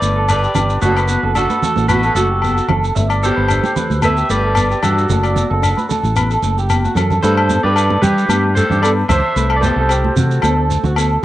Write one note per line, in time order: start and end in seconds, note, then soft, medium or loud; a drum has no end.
0.00 0.46 G1 medium
0.00 0.23 A3 medium
0.00 0.26 B4 medium
0.00 0.26 D5 medium
0.00 shekere medium
0.16 0.42 A4 medium
0.29 0.79 B4 medium
0.29 0.79 D5 medium
0.29 low agogo medium
0.29 shekere medium
0.44 0.55 G4 medium
0.44 shekere soft
0.55 0.77 G1 medium
0.55 0.76 D4 medium
0.55 0.81 G4 medium
0.55 low conga medium
0.55 low agogo medium
0.55 shekere medium
0.69 shekere soft
0.82 1.16 F#1 loud
0.82 1.03 A3 medium
0.82 1.32 F#4 medium
0.82 0.95 A4 medium
0.82 1.32 B4 medium
0.82 shekere medium
0.97 1.22 B4 medium
0.97 low agogo medium
0.97 shekere soft
1.08 1.30 B3 medium
1.08 shekere medium
1.23 1.45 F#1 medium
1.23 1.48 A4 medium
1.35 1.56 D4 medium
1.35 1.86 F#4 medium
1.35 1.88 A4 medium
1.35 low agogo medium
1.35 shekere medium
1.50 1.62 B4 medium
1.50 high conga medium
1.50 shekere soft
1.62 1.84 A3 medium
1.62 1.88 A4 medium
1.62 low conga medium
1.62 shekere medium
1.76 2.09 A1 medium
1.76 high conga medium
1.76 shekere soft
1.88 2.10 B3 medium
1.88 2.14 F#4 medium
1.88 2.02 B4 medium
1.88 2.15 B4 medium
1.88 high conga medium
1.88 low agogo medium
1.88 shekere medium
2.03 2.29 A4 medium
2.03 shekere soft
2.15 2.59 F#1 medium
2.15 2.37 A3 medium
2.15 2.65 F#4 soft
2.15 2.65 A4 medium
2.15 shekere medium
2.30 2.55 G4 medium
2.42 2.64 B3 medium
2.42 low agogo medium
2.42 shekere medium
2.56 2.68 F#4 medium
2.56 shekere soft
2.68 2.90 F#1 medium
2.68 2.90 C4 medium
2.68 2.94 A4 medium
2.68 low conga medium
2.68 low agogo medium
2.84 shekere soft
2.95 3.29 G1 loud
2.95 3.17 A3 medium
2.95 3.09 E5 medium
2.95 shekere loud
3.09 3.35 D5 medium
3.09 low agogo medium
3.09 shekere soft
3.23 3.44 B3 medium
3.23 4.00 G4 medium
3.23 3.99 A4 medium
3.23 4.05 C5 medium
3.23 shekere medium
3.36 3.59 G1 medium
3.36 3.62 B4 medium
3.48 3.71 D4 medium
3.48 low agogo medium
3.48 shekere medium
3.64 3.75 G4 medium
3.64 high conga medium
3.64 shekere soft
3.76 3.97 A3 medium
3.76 4.01 B4 medium
3.76 low conga medium
3.76 shekere medium
3.90 4.22 D2 medium
3.90 high conga medium
3.90 shekere soft
4.02 4.24 B3 medium
4.02 4.16 A4 medium
4.02 4.28 B4 medium
4.02 4.30 E5 medium
4.02 high conga medium
4.02 low agogo medium
4.02 shekere medium
4.17 4.42 G4 medium
4.17 shekere soft
4.29 4.73 G1 medium
4.29 4.50 A3 medium
4.29 4.80 B4 medium
4.29 4.85 D5 medium
4.29 shekere medium
4.44 4.69 A4 medium
4.55 4.77 B3 medium
4.55 low agogo medium
4.55 shekere medium
4.70 4.82 G4 medium
4.70 shekere soft
4.83 5.05 G2 medium
4.83 5.04 D4 medium
4.83 6.93 F#4 medium
4.83 5.09 G4 medium
4.83 6.93 A4 medium
4.83 low conga medium
4.83 low agogo medium
4.83 shekere medium
4.98 shekere soft
5.09 5.43 F#1 medium
5.09 5.31 A3 medium
5.09 5.23 A4 medium
5.09 low conga medium
5.09 shekere medium
5.24 5.49 D5 medium
5.24 low agogo medium
5.24 shekere soft
5.36 5.57 B3 medium
5.36 high conga medium
5.36 low conga medium
5.36 shekere medium
5.50 5.73 F#1 medium
5.50 5.76 A4 medium
5.62 5.83 D4 medium
5.62 low agogo medium
5.62 shekere medium
5.77 5.89 B4 medium
5.77 high conga medium
5.77 shekere soft
5.89 6.10 A3 medium
5.89 6.15 A4 medium
5.89 low conga medium
5.89 shekere medium
6.03 6.36 A1 medium
6.03 high conga medium
6.03 shekere soft
6.16 6.37 B3 medium
6.16 6.30 B4 medium
6.16 low agogo medium
6.16 shekere medium
6.31 6.56 A4 medium
6.31 shekere soft
6.42 6.86 F#1 medium
6.42 6.64 A3 medium
6.42 shekere medium
6.58 6.83 G4 medium
6.58 shekere soft
6.70 6.91 B3 medium
6.70 low agogo medium
6.70 shekere medium
6.84 6.96 F#4 medium
6.84 high conga soft
6.84 shekere soft
6.95 7.17 F#2 medium
6.95 7.17 C4 medium
6.95 7.22 A4 medium
6.95 low conga medium
6.95 low agogo medium
6.95 shekere medium
7.10 low conga medium
7.10 shekere soft
7.22 7.57 G2 loud
7.22 7.44 A3 medium
7.22 7.61 A4 medium
7.22 7.37 B4 medium
7.22 7.63 C5 medium
7.22 shekere medium
7.37 7.63 A4 medium
7.37 low agogo medium
7.49 7.70 B3 medium
7.49 high conga medium
7.49 shekere medium
7.63 7.96 G2 medium
7.63 7.75 G4 medium
7.63 8.01 B4 medium
7.63 8.04 D5 medium
7.76 8.02 A4 medium
7.76 low agogo medium
7.76 shekere medium
7.90 high conga medium
8.02 8.24 G3 medium
8.02 8.53 G4 medium
8.02 8.29 G4 medium
8.02 8.57 B4 medium
8.02 muted clean electric guitar stroke medium
8.02 low conga medium
8.02 shekere medium
8.18 shekere soft
8.29 8.63 G2 medium
8.29 8.50 B3 medium
8.29 8.44 G4 medium
8.29 high conga medium
8.29 low agogo medium
8.29 shekere medium
8.55 8.78 A3 medium
8.55 8.82 A4 medium
8.55 8.82 C5 medium
8.55 shekere medium
8.70 9.02 G2 medium
8.70 8.82 G4 medium
8.70 low conga medium
8.70 shekere soft
8.82 9.05 B3 medium
8.82 8.91 A4 medium
8.82 9.08 B4 medium
8.82 8.90 D5 medium
8.82 low agogo medium
8.82 shekere medium
9.09 9.21 C#2 medium
9.09 9.31 C4 medium
9.09 9.35 C5 medium
9.09 9.54 C5 medium
9.09 9.56 E5 loud
9.09 low conga medium
9.09 low agogo medium
9.09 shekere loud
9.36 9.70 C2 medium
9.36 9.57 A3 medium
9.36 9.50 B4 medium
9.36 shekere medium
9.50 9.76 A4 medium
9.50 low agogo medium
9.57 9.63 D5 medium
9.61 9.84 B3 medium
9.61 11.20 A4 medium
9.61 9.65 B4 medium
9.61 11.19 C5 medium
9.61 high conga medium
9.61 shekere medium
9.66 10.41 G4 medium
9.76 10.09 C2 medium
9.76 9.90 A4 medium
9.89 10.11 C4 medium
9.89 10.15 G4 medium
9.89 low agogo medium
9.89 shekere medium
10.04 high conga medium
10.16 10.38 C3 medium
10.16 10.38 A3 medium
10.16 10.42 F#4 medium
10.16 low conga medium
10.16 shekere medium
10.31 shekere soft
10.42 10.77 D2 medium
10.42 10.64 B3 medium
10.42 10.55 A4 medium
10.42 high conga medium
10.42 low agogo medium
10.42 shekere medium
10.56 10.82 A4 medium
10.70 10.91 A3 medium
10.70 shekere medium
10.83 11.16 D2 medium
10.83 10.96 F#4 medium
10.83 low conga medium
10.83 shekere soft
10.96 11.18 B3 medium
10.96 11.22 A4 medium
10.96 low agogo medium
10.96 shekere medium